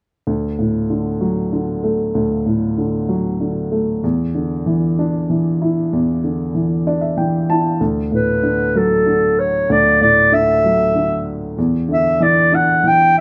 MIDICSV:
0, 0, Header, 1, 3, 480
1, 0, Start_track
1, 0, Key_signature, 2, "major"
1, 0, Tempo, 627615
1, 209, Time_signature, 3, 2, 24, 8
1, 10098, End_track
2, 0, Start_track
2, 0, Title_t, "Clarinet"
2, 0, Program_c, 0, 71
2, 6235, Note_on_c, 0, 71, 52
2, 6709, Note_on_c, 0, 69, 50
2, 6721, Note_off_c, 0, 71, 0
2, 7182, Note_on_c, 0, 73, 54
2, 7194, Note_off_c, 0, 69, 0
2, 7438, Note_on_c, 0, 74, 62
2, 7449, Note_off_c, 0, 73, 0
2, 7657, Note_off_c, 0, 74, 0
2, 7662, Note_on_c, 0, 74, 62
2, 7904, Note_on_c, 0, 76, 69
2, 7916, Note_off_c, 0, 74, 0
2, 8617, Note_off_c, 0, 76, 0
2, 9119, Note_on_c, 0, 76, 57
2, 9349, Note_on_c, 0, 74, 62
2, 9360, Note_off_c, 0, 76, 0
2, 9595, Note_on_c, 0, 78, 57
2, 9607, Note_off_c, 0, 74, 0
2, 9846, Note_on_c, 0, 79, 69
2, 9857, Note_off_c, 0, 78, 0
2, 10068, Note_off_c, 0, 79, 0
2, 10098, End_track
3, 0, Start_track
3, 0, Title_t, "Upright piano"
3, 0, Program_c, 1, 0
3, 206, Note_on_c, 1, 38, 39
3, 352, Control_c, 1, 64, 127
3, 450, Note_on_c, 1, 45, 29
3, 689, Note_on_c, 1, 50, 32
3, 922, Note_on_c, 1, 54, 37
3, 1155, Note_off_c, 1, 50, 0
3, 1167, Note_on_c, 1, 50, 35
3, 1380, Note_off_c, 1, 45, 0
3, 1405, Note_on_c, 1, 57, 39
3, 1616, Note_off_c, 1, 38, 0
3, 1642, Note_on_c, 1, 38, 41
3, 1856, Note_off_c, 1, 54, 0
3, 1883, Note_on_c, 1, 45, 29
3, 2098, Note_off_c, 1, 50, 0
3, 2125, Note_on_c, 1, 50, 34
3, 2337, Note_off_c, 1, 57, 0
3, 2360, Note_on_c, 1, 54, 38
3, 2593, Note_off_c, 1, 50, 0
3, 2604, Note_on_c, 1, 50, 35
3, 2816, Note_off_c, 1, 45, 0
3, 2843, Note_on_c, 1, 57, 36
3, 3053, Note_off_c, 1, 38, 0
3, 3061, Note_off_c, 1, 54, 0
3, 3071, Note_off_c, 1, 50, 0
3, 3078, Note_off_c, 1, 57, 0
3, 3087, Note_on_c, 1, 40, 47
3, 3097, Control_c, 1, 64, 0
3, 3227, Control_c, 1, 64, 127
3, 3326, Note_on_c, 1, 50, 34
3, 3564, Note_on_c, 1, 52, 34
3, 3815, Note_on_c, 1, 62, 38
3, 4039, Note_off_c, 1, 52, 0
3, 4051, Note_on_c, 1, 52, 34
3, 4257, Note_off_c, 1, 50, 0
3, 4295, Note_on_c, 1, 64, 36
3, 4496, Note_off_c, 1, 40, 0
3, 4534, Note_on_c, 1, 40, 48
3, 4742, Note_off_c, 1, 62, 0
3, 4772, Note_on_c, 1, 50, 32
3, 4980, Note_off_c, 1, 52, 0
3, 5007, Note_on_c, 1, 52, 31
3, 5222, Note_off_c, 1, 64, 0
3, 5253, Note_on_c, 1, 62, 33
3, 5255, Note_on_c, 1, 74, 41
3, 5362, Note_off_c, 1, 74, 0
3, 5364, Note_on_c, 1, 76, 39
3, 5475, Note_off_c, 1, 52, 0
3, 5477, Note_off_c, 1, 76, 0
3, 5486, Note_on_c, 1, 52, 34
3, 5488, Note_on_c, 1, 79, 37
3, 5700, Note_off_c, 1, 50, 0
3, 5711, Note_off_c, 1, 79, 0
3, 5733, Note_on_c, 1, 81, 44
3, 5736, Note_on_c, 1, 64, 36
3, 5940, Note_off_c, 1, 40, 0
3, 5948, Note_off_c, 1, 62, 0
3, 5952, Note_off_c, 1, 52, 0
3, 5953, Note_off_c, 1, 81, 0
3, 5964, Note_off_c, 1, 64, 0
3, 5970, Note_on_c, 1, 38, 44
3, 5975, Control_c, 1, 64, 0
3, 6101, Control_c, 1, 64, 127
3, 6208, Note_on_c, 1, 45, 30
3, 6449, Note_on_c, 1, 50, 37
3, 6695, Note_on_c, 1, 54, 38
3, 6918, Note_off_c, 1, 50, 0
3, 6930, Note_on_c, 1, 50, 37
3, 7139, Note_off_c, 1, 45, 0
3, 7378, Note_off_c, 1, 38, 0
3, 7415, Note_on_c, 1, 38, 44
3, 7623, Note_off_c, 1, 54, 0
3, 7657, Note_on_c, 1, 45, 31
3, 7860, Note_off_c, 1, 50, 0
3, 7894, Note_on_c, 1, 50, 38
3, 8140, Note_on_c, 1, 54, 35
3, 8366, Note_off_c, 1, 50, 0
3, 8377, Note_on_c, 1, 50, 34
3, 8585, Note_off_c, 1, 45, 0
3, 8822, Note_off_c, 1, 38, 0
3, 8833, Note_off_c, 1, 54, 0
3, 8839, Note_off_c, 1, 50, 0
3, 8858, Note_on_c, 1, 40, 49
3, 8860, Control_c, 1, 64, 0
3, 8971, Control_c, 1, 64, 127
3, 9090, Note_on_c, 1, 50, 34
3, 9333, Note_on_c, 1, 52, 36
3, 9577, Note_on_c, 1, 62, 39
3, 9807, Note_off_c, 1, 52, 0
3, 9818, Note_on_c, 1, 52, 36
3, 10022, Note_off_c, 1, 50, 0
3, 10098, Note_off_c, 1, 40, 0
3, 10098, Note_off_c, 1, 52, 0
3, 10098, Note_off_c, 1, 62, 0
3, 10098, End_track
0, 0, End_of_file